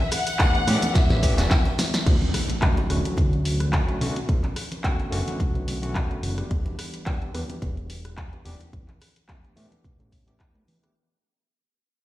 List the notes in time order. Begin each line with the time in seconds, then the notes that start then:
0.12 F#5, cross-stick, open hi-hat, muted conga, cabasa
0.26 closed hi-hat, tambourine, cabasa
0.39 E3 A3 B3 D4 G4, kick, clap, closed hi-hat, tambourine, high conga, cabasa
0.54 closed hi-hat, tambourine
0.67 A2 E3 A3 B3 D4 G4, cross-stick, open hi-hat, muted conga, cabasa
0.82 closed hi-hat, tambourine, high conga, cabasa
0.95 E5, kick, snare, closed hi-hat, tambourine, low conga, cabasa
1.10 A1, snare, closed hi-hat, tambourine, muted conga
1.22 A1 E3 A3 B3 D4 G4, kick, open hi-hat, cabasa
1.37 E1 E3 A3 B3 D4 F#4, snare, closed hi-hat, tambourine, high conga, cabasa
1.51 kick, snare, clap, closed hi-hat, tambourine, cabasa
1.65 closed hi-hat, tambourine, muted conga
1.79 snare, open hi-hat, high conga, cabasa
1.94 snare, closed hi-hat, tambourine, cabasa
2.06 D2, kick, closed hi-hat, crash, impact
2.22 closed hi-hat, muted conga, high conga
2.34 cross-stick, open hi-hat
2.50 closed hi-hat
2.61 D3 F#3 A3 C#4 F#4, kick, clap, closed hi-hat, high conga
2.77 closed hi-hat, muted conga
2.89 D1 D3 F#3 A3 C#4 F#4, cross-stick, open hi-hat
3.05 closed hi-hat, high conga
3.17 D2, kick, closed hi-hat, muted conga, low conga
3.33 closed hi-hat
3.45 open hi-hat
3.60 cross-stick, closed hi-hat, high conga
3.73 kick, clap, closed hi-hat, muted conga
3.87 D3 F#3 A3 C#4 F#4, closed hi-hat
4.01 B1 D3 A3 B3 C#4 F#4, open hi-hat, high conga
4.16 closed hi-hat, muted conga
4.29 B1, kick, closed hi-hat
4.43 clap, closed hi-hat, high conga
4.56 cross-stick, open hi-hat
4.72 closed hi-hat, muted conga
4.84 D3 A3 B3 C#4 F#4, kick, clap, closed hi-hat, high conga
5.00 closed hi-hat
5.11 F#1 D3 A3 B3 C#4 F#4, open hi-hat, muted conga
5.27 closed hi-hat, high conga
5.40 kick, closed hi-hat, low conga
5.55 B1, closed hi-hat
5.68 open hi-hat, muted conga
5.82 D3 A3 B3 C#4 F#4, closed hi-hat, high conga
5.95 kick, clap, closed hi-hat
6.11 closed hi-hat, muted conga
6.23 F#1, open hi-hat, high conga
6.37 E3 G3 B3 D4 G4, cross-stick, closed hi-hat
6.51 E1, kick, closed hi-hat
6.66 closed hi-hat, muted conga, high conga
6.79 cross-stick, open hi-hat
6.94 closed hi-hat
7.06 E3 G3 B3 D4 G4, kick, clap, closed hi-hat, muted conga, high conga
7.22 closed hi-hat
7.33 E2 E3 G3 B3 D4 G4, cross-stick, open hi-hat
7.49 closed hi-hat, high conga
7.62 E1, kick, closed hi-hat, muted conga, low conga
7.77 closed hi-hat
7.90 open hi-hat
8.05 cross-stick, closed hi-hat, muted conga, high conga
8.17 kick, clap, closed hi-hat
8.32 E3 G3 B3 D4 G4, closed hi-hat
8.45 E1 E3 G3 B3 D4 G4, open hi-hat, high conga
8.60 closed hi-hat, muted conga
8.73 A1, kick, closed hi-hat
8.88 clap, closed hi-hat, high conga
9.01 cross-stick, open hi-hat, muted conga
9.16 closed hi-hat
9.28 E3 A3 B3 D4 G4, kick, clap, closed hi-hat, high conga
9.44 closed hi-hat
9.56 A2 E3 A3 B3 D4 G4, open hi-hat, muted conga
9.71 closed hi-hat, high conga
9.84 kick, closed hi-hat, low conga
9.99 A1, closed hi-hat, muted conga
10.12 A1, kick, open hi-hat
10.27 E3 A3 B3 D4 G4, closed hi-hat, high conga
10.40 kick, clap, closed hi-hat
10.55 A2, closed hi-hat, muted conga
10.68 E2, open hi-hat, high conga
10.82 E3 A3 B3 D4 G4, cross-stick, closed hi-hat